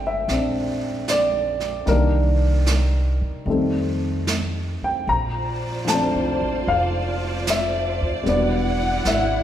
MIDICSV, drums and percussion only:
0, 0, Header, 1, 2, 480
1, 0, Start_track
1, 0, Tempo, 795756
1, 1127, Time_signature, 4, 2, 24, 8
1, 5689, End_track
2, 0, Start_track
2, 0, Title_t, "Drums"
2, 171, Note_on_c, 9, 25, 27
2, 171, Note_on_c, 9, 38, 24
2, 232, Note_off_c, 9, 38, 0
2, 651, Note_on_c, 9, 38, 36
2, 651, Note_on_c, 9, 44, 37
2, 711, Note_off_c, 9, 38, 0
2, 711, Note_off_c, 9, 44, 0
2, 966, Note_on_c, 9, 38, 23
2, 1026, Note_off_c, 9, 38, 0
2, 1126, Note_off_c, 9, 25, 0
2, 1126, Note_on_c, 9, 25, 29
2, 1126, Note_on_c, 9, 38, 23
2, 1186, Note_off_c, 9, 38, 0
2, 1607, Note_on_c, 9, 38, 36
2, 1607, Note_on_c, 9, 44, 45
2, 1667, Note_off_c, 9, 38, 0
2, 1667, Note_off_c, 9, 44, 0
2, 2091, Note_off_c, 9, 25, 0
2, 2091, Note_on_c, 9, 25, 34
2, 2577, Note_on_c, 9, 38, 36
2, 2577, Note_on_c, 9, 44, 42
2, 2637, Note_off_c, 9, 38, 0
2, 2637, Note_off_c, 9, 44, 0
2, 3060, Note_off_c, 9, 25, 0
2, 3060, Note_on_c, 9, 25, 26
2, 3543, Note_on_c, 9, 38, 37
2, 3543, Note_on_c, 9, 44, 47
2, 3603, Note_off_c, 9, 38, 0
2, 3603, Note_off_c, 9, 44, 0
2, 4024, Note_off_c, 9, 25, 0
2, 4024, Note_on_c, 9, 25, 29
2, 4505, Note_on_c, 9, 38, 38
2, 4505, Note_on_c, 9, 44, 48
2, 4566, Note_off_c, 9, 38, 0
2, 4566, Note_off_c, 9, 44, 0
2, 4983, Note_off_c, 9, 25, 0
2, 4983, Note_on_c, 9, 25, 33
2, 4983, Note_on_c, 9, 38, 21
2, 5043, Note_off_c, 9, 38, 0
2, 5458, Note_on_c, 9, 38, 37
2, 5458, Note_on_c, 9, 44, 40
2, 5518, Note_off_c, 9, 38, 0
2, 5518, Note_off_c, 9, 44, 0
2, 5689, Note_off_c, 9, 25, 0
2, 5689, End_track
0, 0, End_of_file